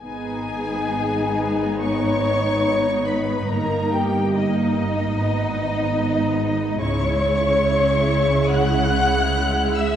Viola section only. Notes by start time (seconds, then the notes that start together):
0.02 B3 D#4
3.50 A#3 D#4
4.35 A#3 D#4
5.14 B3 D#4
6.81 G#3 E4